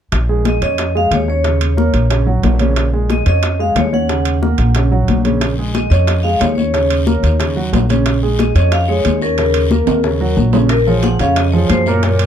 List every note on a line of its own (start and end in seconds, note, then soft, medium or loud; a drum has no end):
0.12 0.58 A#1 medium
0.12 high bongo medium
0.12 high conga soft
0.12 high timbale medium
0.29 0.56 G#3 medium
0.29 0.56 G#4 medium
0.29 high conga soft
0.45 0.55 D#5 medium
0.45 high bongo medium
0.45 high conga medium
0.45 high timbale medium
0.61 1.08 F2 medium
0.61 0.89 C#4 medium
0.61 0.89 C#5 medium
0.61 0.94 D#5 medium
0.61 high bongo soft
0.61 high conga soft
0.61 high timbale medium
0.78 high bongo medium
0.78 high conga soft
0.78 high timbale medium
0.95 1.22 G#3 medium
0.95 1.22 G#4 medium
0.95 1.11 F5 medium
0.95 high bongo soft
0.95 high conga soft
1.11 1.88 D#2 medium
1.11 1.28 C#5 medium
1.11 high bongo soft
1.11 low bongo medium
1.11 high conga medium
1.11 high timbale medium
1.28 1.42 C#4 medium
1.28 1.42 C#5 medium
1.28 2.24 C#5 medium
1.28 high bongo soft
1.44 1.71 C#3 medium
1.44 1.72 C#4 medium
1.44 high bongo medium
1.44 high conga soft
1.44 high timbale medium
1.61 high conga soft
1.61 high timbale medium
1.77 2.05 A#3 medium
1.77 2.05 A#4 medium
1.77 high bongo medium
1.77 high conga medium
1.94 2.40 A#1 medium
1.94 high bongo soft
1.94 high conga soft
1.94 high timbale medium
2.10 2.24 C#3 medium
2.10 2.24 C#4 medium
2.10 high bongo medium
2.10 high conga soft
2.10 high timbale medium
2.27 2.54 F#3 medium
2.27 2.54 F#4 medium
2.27 high bongo soft
2.27 high conga soft
2.43 3.21 A#1 medium
2.43 high bongo soft
2.43 low bongo medium
2.43 high conga medium
2.43 high timbale medium
2.43 low timbale medium
2.59 2.87 C#3 medium
2.59 2.87 C#4 medium
2.59 high bongo soft
2.59 high conga medium
2.59 high timbale medium
2.76 high bongo medium
2.76 high timbale medium
2.93 3.21 G#3 medium
2.93 3.21 G#4 medium
2.93 high conga soft
3.10 3.26 D#5 medium
3.10 high bongo medium
3.10 high conga medium
3.10 high timbale medium
3.26 3.72 F2 medium
3.26 3.54 C#4 medium
3.26 3.54 C#5 medium
3.26 3.58 D#5 medium
3.26 high bongo soft
3.26 high conga soft
3.26 high timbale medium
3.43 high bongo medium
3.43 high conga soft
3.43 high timbale medium
3.59 3.87 G#3 medium
3.59 3.87 G#4 medium
3.59 3.68 F5 medium
3.59 high bongo soft
3.59 high conga soft
3.75 4.53 D#2 medium
3.75 3.94 C#5 medium
3.75 high bongo soft
3.75 low bongo medium
3.75 high conga medium
3.75 high timbale medium
3.75 low timbale medium
3.93 4.06 C#4 medium
3.93 4.06 C#5 medium
3.93 4.89 F#5 medium
3.93 high bongo soft
3.93 high conga medium
4.09 4.36 C#3 medium
4.09 4.37 C#4 medium
4.09 high bongo medium
4.09 high timbale medium
4.25 high conga soft
4.25 high timbale medium
4.42 4.69 A#3 medium
4.42 4.70 A#4 medium
4.42 high bongo medium
4.42 high conga medium
4.58 5.05 A#1 medium
4.58 high bongo soft
4.58 high conga soft
4.58 high timbale medium
4.75 4.89 C#3 medium
4.75 4.89 C#4 medium
4.75 high bongo medium
4.75 high conga soft
4.75 high timbale medium
4.91 5.19 F#3 medium
4.91 5.19 F#4 medium
4.91 high bongo soft
4.91 high conga soft
5.08 5.85 A#1 medium
5.08 high bongo soft
5.08 low bongo medium
5.08 high conga medium
5.08 high timbale medium
5.25 5.52 C#3 medium
5.25 5.52 C#4 medium
5.25 high bongo soft
5.25 high conga medium
5.25 high timbale medium
5.41 high bongo medium
5.41 high conga soft
5.41 high timbale medium
5.41 long guiro medium
5.58 5.86 G#3 medium
5.58 5.86 G#4 medium
5.58 high conga soft
5.74 5.82 D#5 medium
5.74 high bongo medium
5.74 high conga medium
5.74 high timbale medium
5.74 short guiro medium
5.90 6.37 F2 medium
5.90 6.19 C#4 medium
5.90 6.19 C#5 medium
5.90 6.25 D#5 medium
5.90 high bongo soft
5.90 high conga soft
5.90 high timbale medium
5.90 short guiro medium
6.07 high bongo medium
6.07 high conga soft
6.07 high timbale medium
6.07 long guiro medium
6.23 6.52 G#3 medium
6.23 6.52 G#4 medium
6.23 6.41 F5 medium
6.23 high bongo soft
6.23 high conga soft
6.40 7.18 D#2 medium
6.40 6.54 C#5 medium
6.40 high bongo soft
6.40 low bongo medium
6.40 high conga medium
6.40 high timbale medium
6.40 low timbale medium
6.40 short guiro medium
6.55 6.71 C#4 medium
6.55 7.52 C#5 medium
6.55 6.71 C#5 medium
6.55 high bongo soft
6.55 high conga medium
6.55 short guiro medium
6.74 7.01 C#3 medium
6.74 7.01 C#4 medium
6.74 high bongo medium
6.74 high timbale medium
6.74 long guiro medium
6.90 high conga soft
6.90 high timbale medium
7.07 7.34 A#3 medium
7.07 7.34 A#4 medium
7.07 high bongo medium
7.07 high conga medium
7.07 short guiro medium
7.23 7.69 D#2 medium
7.23 high bongo soft
7.23 high conga soft
7.23 high timbale medium
7.23 short guiro medium
7.39 7.53 C#3 medium
7.39 7.53 C#4 medium
7.39 high bongo medium
7.39 high conga soft
7.39 high timbale medium
7.39 long guiro medium
7.56 7.83 F#3 medium
7.56 7.84 F#4 medium
7.56 high bongo soft
7.56 high conga soft
7.73 8.50 A#1 medium
7.73 high bongo soft
7.73 low bongo medium
7.73 high conga medium
7.73 high timbale medium
7.73 low timbale medium
7.73 short guiro medium
7.89 8.17 C#3 medium
7.89 8.17 C#4 medium
7.89 high bongo soft
7.89 high conga medium
7.89 high timbale medium
7.89 short guiro medium
8.06 high bongo medium
8.06 high timbale medium
8.06 long guiro medium
8.23 8.50 G#3 medium
8.23 8.50 G#4 medium
8.23 high conga soft
8.39 8.54 D#5 medium
8.39 high bongo medium
8.39 high conga medium
8.39 high timbale medium
8.39 short guiro medium
8.55 9.02 F2 medium
8.55 8.83 C#4 medium
8.55 8.83 C#5 medium
8.55 8.73 D#5 medium
8.55 high bongo soft
8.55 high conga soft
8.55 high timbale medium
8.55 short guiro medium
8.72 8.88 F5 loud
8.72 high bongo medium
8.72 high conga soft
8.72 high timbale medium
8.72 long guiro medium
8.88 9.16 G#3 medium
8.88 9.16 G#4 medium
8.88 9.23 C#5 medium
8.88 high bongo soft
8.88 high conga soft
9.05 9.82 D#2 medium
9.05 high bongo soft
9.05 low bongo medium
9.05 high conga medium
9.05 high timbale medium
9.05 short guiro medium
9.21 9.36 C#4 medium
9.21 10.34 A#4 medium
9.21 9.36 C#5 medium
9.21 high bongo soft
9.21 short guiro medium
9.38 9.66 C#3 medium
9.38 9.66 C#4 medium
9.38 high bongo medium
9.38 high conga soft
9.38 high timbale medium
9.38 long guiro medium
9.54 high conga soft
9.54 high timbale medium
9.71 9.98 A#3 medium
9.71 9.99 A#4 medium
9.71 high bongo medium
9.71 high conga medium
9.71 short guiro medium
9.87 10.34 D#2 medium
9.87 high bongo soft
9.87 high conga soft
9.87 high timbale medium
9.87 short guiro medium
10.03 10.18 C#3 medium
10.03 10.18 C#4 medium
10.03 high bongo medium
10.03 high conga soft
10.03 long guiro medium
10.20 10.48 F#3 medium
10.20 10.48 F#4 medium
10.20 high bongo soft
10.20 high conga soft
10.37 11.14 A#1 medium
10.37 high bongo soft
10.37 low bongo medium
10.37 high conga medium
10.37 short guiro medium
10.53 10.68 C#3 medium
10.53 10.68 C#4 medium
10.53 high bongo soft
10.53 high conga medium
10.53 low timbale medium
10.53 short guiro medium
10.69 10.88 A#4 loud
10.69 high bongo medium
10.69 high conga soft
10.69 high timbale medium
10.69 long guiro medium
10.87 11.14 F3 medium
10.87 11.15 F4 medium
10.87 11.15 G#4 medium
10.87 11.05 C#5 medium
10.87 high conga soft
11.03 11.11 F#5 medium
11.03 high bongo medium
11.03 high conga medium
11.03 high timbale medium
11.03 short guiro medium
11.19 11.66 F2 medium
11.19 11.47 C#3 medium
11.19 11.48 C#4 medium
11.19 11.48 C#5 medium
11.19 11.36 F5 medium
11.19 high bongo soft
11.19 high conga soft
11.19 high timbale medium
11.19 short guiro medium
11.36 11.44 D#5 medium
11.36 high bongo medium
11.36 high conga soft
11.36 high timbale medium
11.36 long guiro medium
11.52 11.81 F3 medium
11.52 11.81 F4 medium
11.52 11.81 G#4 medium
11.52 11.60 C#5 medium
11.52 high bongo soft
11.52 high conga soft
11.70 12.26 F#2 medium
11.70 11.77 C5 medium
11.70 high bongo soft
11.70 low bongo medium
11.70 high conga medium
11.70 high timbale medium
11.70 short guiro medium
11.86 12.01 A#2 medium
11.86 12.01 A#3 medium
11.86 12.01 A#4 medium
11.86 12.18 C#5 medium
11.86 high bongo soft
11.86 high conga medium
11.86 short guiro medium
12.03 12.26 A#2 medium
12.03 12.26 A#3 medium
12.03 12.26 A#4 medium
12.03 high bongo medium
12.03 high conga soft
12.03 high timbale medium
12.03 long guiro medium
12.19 high conga soft
12.19 high timbale medium